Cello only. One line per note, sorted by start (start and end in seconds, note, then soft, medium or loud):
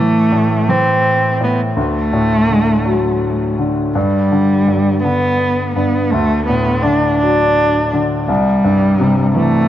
0.00 0.71 A3 medium
0.70 1.41 C4 medium
1.43 1.59 B3 medium
1.78 3.56 A3 medium
3.96 5.01 G3 medium
5.03 5.72 B3 medium
5.75 6.12 B3 medium
6.10 6.46 A3 medium
6.46 6.84 B3 medium
6.82 7.17 D4 medium
7.18 7.97 D4 medium
8.27 9.32 G3 medium
9.35 9.68 A3 medium